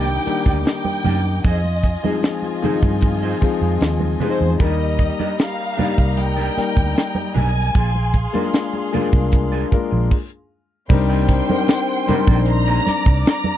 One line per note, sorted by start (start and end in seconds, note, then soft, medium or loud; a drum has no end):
0.00 0.17 C2 medium
0.00 0.26 D#3 medium
0.00 0.26 G3 medium
0.00 0.27 A#3 medium
0.00 0.27 D4 medium
0.00 1.41 D#4 medium
0.00 1.47 D#4 medium
0.00 0.28 G4 medium
0.00 0.63 G5 medium
0.00 1.41 G5 medium
0.00 1.41 D6 medium
0.07 muted conga soft
0.26 1.33 D#3 medium
0.26 1.33 G3 medium
0.26 1.33 A#3 medium
0.26 1.33 D4 medium
0.26 1.34 G4 medium
0.26 muted clean electric guitar stroke soft
0.26 muted fingered electric bass stroke soft
0.26 closed hi-hat medium
0.46 0.63 D2 medium
0.46 0.57 A#3 soft
0.46 0.56 D#4 soft
0.46 0.56 G4 soft
0.46 0.56 D5 soft
0.46 kick medium
0.65 1.42 G5 medium
0.65 muted clean electric guitar stroke soft
0.65 snare loud
0.65 closed hi-hat medium
0.65 muted conga soft
0.85 muted clean electric guitar stroke soft
0.85 muted conga soft
0.85 high conga medium
1.04 1.39 F#2 medium
1.04 1.18 A#3 medium
1.04 1.18 D#4 medium
1.04 1.19 G4 medium
1.04 1.19 D5 medium
1.04 closed hi-hat medium
1.04 low conga medium
1.25 muted clean electric guitar stroke soft
1.44 1.95 F2 medium
1.44 1.57 D#4 medium
1.44 4.56 F4 medium
1.44 1.58 G#4 medium
1.44 1.58 C5 medium
1.44 4.56 D#5 medium
1.44 1.58 D#5 medium
1.44 2.21 D#5 medium
1.44 4.56 G#5 medium
1.44 kick loud
1.44 closed hi-hat medium
1.44 muted conga soft
1.64 muted conga soft
1.83 muted clean electric guitar stroke soft
1.83 kick medium
1.83 closed hi-hat medium
2.03 2.43 F3 medium
2.03 2.44 G#3 medium
2.03 2.44 C4 medium
2.03 2.44 D#4 medium
2.03 2.15 D#4 soft
2.03 2.15 G#4 soft
2.03 2.44 G#4 medium
2.03 2.14 C5 soft
2.03 2.14 D#5 soft
2.03 high conga medium
2.23 snare loud
2.23 closed hi-hat medium
2.23 muted conga soft
2.42 muted clean electric guitar stroke soft
2.42 muted conga soft
2.62 3.16 D#3 medium
2.62 3.16 F3 medium
2.62 3.16 C4 medium
2.62 2.76 D#4 medium
2.62 3.17 D#4 medium
2.62 2.76 G#4 medium
2.62 3.17 G#4 medium
2.62 2.77 C5 medium
2.62 2.77 D#5 medium
2.62 muted fingered electric bass stroke soft
2.62 closed hi-hat medium
2.62 high conga medium
2.62 low conga medium
2.83 3.33 G2 medium
2.83 muted clean electric guitar stroke soft
2.83 kick medium
3.01 muted clean electric guitar stroke soft
3.01 kick medium
3.01 closed hi-hat medium
3.22 3.36 D#4 medium
3.22 3.35 G#4 medium
3.22 3.35 C5 medium
3.22 3.35 D#5 medium
3.22 muted conga soft
3.41 3.95 F3 medium
3.41 3.95 G#3 medium
3.41 3.95 C4 medium
3.41 3.95 D#4 medium
3.41 3.96 G#4 medium
3.41 muted clean electric guitar stroke soft
3.41 muted fingered electric bass stroke soft
3.41 kick medium
3.41 closed hi-hat medium
3.61 3.78 F2 medium
3.61 muted clean electric guitar stroke soft
3.81 4.15 D#2 medium
3.81 muted clean electric guitar stroke soft
3.81 snare loud
3.81 closed hi-hat medium
4.00 muted clean electric guitar stroke soft
4.00 high conga medium
4.20 4.47 F3 medium
4.20 4.47 G#3 medium
4.20 4.47 C4 medium
4.20 4.40 D#4 medium
4.20 4.48 D#4 medium
4.20 4.40 G#4 medium
4.20 4.48 G#4 medium
4.20 4.40 C5 medium
4.20 4.58 C5 medium
4.20 4.39 D#5 medium
4.20 closed hi-hat medium
4.20 low conga medium
4.40 4.57 E2 medium
4.40 muted clean electric guitar stroke soft
4.59 5.10 D#2 medium
4.59 5.39 G3 medium
4.59 7.71 G3 medium
4.59 5.40 A#3 medium
4.59 4.73 D4 medium
4.59 5.40 D#4 medium
4.59 4.73 G4 medium
4.59 5.40 A#4 medium
4.59 4.74 A#4 medium
4.59 4.74 D5 medium
4.59 7.71 D#5 medium
4.59 5.36 D#5 medium
4.59 7.71 A#5 medium
4.59 kick loud
4.59 closed hi-hat medium
4.99 muted clean electric guitar stroke soft
4.99 kick medium
4.99 closed hi-hat medium
5.19 5.30 D4 soft
5.19 5.30 G4 soft
5.19 5.29 A#4 medium
5.19 5.29 D5 medium
5.19 high conga medium
5.39 6.19 F5 medium
5.39 snare loud
5.39 closed hi-hat medium
5.58 muted clean electric guitar stroke soft
5.77 6.31 G3 medium
5.77 6.31 A#3 medium
5.77 5.90 D4 medium
5.77 6.32 D#4 medium
5.77 5.91 G4 medium
5.77 5.91 A#4 medium
5.77 6.32 A#4 medium
5.77 6.32 D5 medium
5.77 5.91 D5 medium
5.77 muted fingered electric bass stroke soft
5.77 closed hi-hat medium
5.77 high conga medium
5.77 low conga medium
5.98 6.48 C2 medium
5.98 kick medium
6.17 7.37 G5 loud
6.17 muted clean electric guitar stroke soft
6.17 closed hi-hat medium
6.17 muted conga soft
6.36 6.51 D4 soft
6.36 6.50 G4 medium
6.36 6.50 A#4 medium
6.36 6.50 D5 medium
6.36 muted conga soft
6.56 7.63 G3 medium
6.56 7.63 A#3 medium
6.56 7.64 D#4 medium
6.56 7.64 A#4 medium
6.56 7.64 D5 medium
6.56 muted clean electric guitar stroke soft
6.56 muted fingered electric bass stroke soft
6.56 snare soft
6.56 closed hi-hat medium
6.76 6.94 D2 medium
6.76 muted clean electric guitar stroke soft
6.76 kick medium
6.95 muted clean electric guitar stroke soft
6.95 snare loud
6.95 closed hi-hat medium
7.15 muted clean electric guitar stroke soft
7.15 muted conga soft
7.15 high conga medium
7.34 7.69 B1 medium
7.34 7.48 D4 medium
7.34 7.48 G4 medium
7.34 7.48 A#4 medium
7.34 7.49 D5 medium
7.34 8.50 G#5 loud
7.34 closed hi-hat medium
7.34 low conga medium
7.55 muted clean electric guitar stroke soft
7.74 8.25 A#1 medium
7.74 7.88 A#3 medium
7.74 7.88 F4 medium
7.74 10.07 G#4 medium
7.74 7.88 G#4 medium
7.74 7.89 D5 medium
7.74 10.07 F5 medium
7.74 10.07 C6 medium
7.74 kick loud
7.74 closed hi-hat medium
7.95 muted conga soft
8.14 muted clean electric guitar stroke soft
8.14 kick medium
8.14 closed hi-hat medium
8.33 8.73 G#3 medium
8.33 8.74 A#3 medium
8.33 8.45 A#3 soft
8.33 8.74 D4 medium
8.33 8.74 F4 medium
8.33 8.45 F4 soft
8.33 8.44 G#4 soft
8.33 8.75 A#4 medium
8.33 8.44 D5 medium
8.33 high conga medium
8.54 snare loud
8.54 closed hi-hat medium
8.54 muted conga soft
8.73 muted clean electric guitar stroke soft
8.73 muted conga soft
8.92 9.46 G#3 medium
8.92 9.46 A#3 medium
8.92 9.06 A#3 medium
8.92 9.46 D4 medium
8.92 9.06 F4 medium
8.92 9.47 F4 medium
8.92 9.06 G#4 medium
8.92 9.47 A#4 medium
8.92 9.07 D5 medium
8.92 muted fingered electric bass stroke soft
8.92 closed hi-hat medium
8.92 high conga medium
8.92 low conga medium
9.13 9.63 C2 medium
9.13 muted clean electric guitar stroke soft
9.13 kick medium
9.32 muted clean electric guitar stroke soft
9.32 kick medium
9.32 closed hi-hat medium
9.52 9.66 A#3 soft
9.52 9.66 F4 medium
9.52 9.65 G#4 medium
9.52 9.65 D5 medium
9.71 10.11 G#3 medium
9.71 10.11 A#3 medium
9.71 10.11 D4 medium
9.71 10.12 F4 medium
9.71 10.12 A#4 medium
9.71 muted clean electric guitar stroke soft
9.71 muted fingered electric bass stroke soft
9.71 kick medium
9.71 closed hi-hat medium
9.91 10.09 A#1 medium
9.91 muted clean electric guitar stroke soft
10.11 kick medium
10.11 crash medium
10.89 11.40 C2 loud
10.89 11.29 G3 medium
10.89 11.30 C4 medium
10.89 11.30 D4 medium
10.89 11.30 D#4 medium
10.89 11.30 A#4 medium
10.89 12.83 C5 medium
10.89 12.44 G5 medium
10.89 12.83 C6 loud
10.89 muted clean electric guitar stroke soft
10.89 kick loud
10.89 crash medium
10.89 muted conga soft
10.89 low conga medium
11.09 11.23 A#3 medium
11.09 11.23 D#4 medium
11.09 11.23 G4 medium
11.09 11.22 D5 medium
11.29 muted clean electric guitar stroke soft
11.29 kick medium
11.29 closed hi-hat medium
11.48 11.88 G3 medium
11.48 11.89 C4 medium
11.48 11.89 D4 medium
11.48 11.89 D#4 medium
11.48 11.90 A#4 medium
11.48 muted clean electric guitar stroke soft
11.48 high conga medium
11.68 muted clean electric guitar stroke soft
11.68 snare loud
11.68 closed hi-hat medium
11.68 muted conga soft
11.89 muted clean electric guitar stroke soft
12.07 12.21 G3 medium
12.07 12.18 A#3 medium
12.07 12.21 C4 medium
12.07 12.22 D4 medium
12.07 12.19 D#4 medium
12.07 12.22 D#4 medium
12.07 12.19 G4 medium
12.07 12.22 A#4 loud
12.07 12.19 D5 medium
12.07 muted fingered electric bass stroke soft
12.07 closed hi-hat medium
12.07 high conga medium
12.07 low conga medium
12.27 12.78 A#1 medium
12.27 13.34 G3 medium
12.27 12.39 A#3 soft
12.27 13.34 C4 medium
12.27 13.34 D4 medium
12.27 13.34 D#4 medium
12.27 12.38 D#4 soft
12.27 12.38 G4 medium
12.27 13.35 A#4 medium
12.27 12.38 D5 medium
12.27 kick medium
12.46 13.22 A#5 loud
12.46 muted clean electric guitar stroke soft
12.46 closed hi-hat medium
12.67 12.81 A#3 medium
12.67 12.81 D#4 medium
12.67 12.80 G4 medium
12.67 12.80 D5 medium
12.86 13.57 D5 medium
12.86 13.57 D6 medium
12.86 muted clean electric guitar stroke soft
12.86 muted fingered electric bass stroke soft
12.86 snare soft
12.86 closed hi-hat medium
12.86 high conga soft
13.06 13.23 C2 medium
13.06 muted clean electric guitar stroke soft
13.06 kick loud
13.26 13.57 A#5 loud
13.26 muted clean electric guitar stroke soft
13.26 snare loud
13.26 closed hi-hat medium
13.44 high conga medium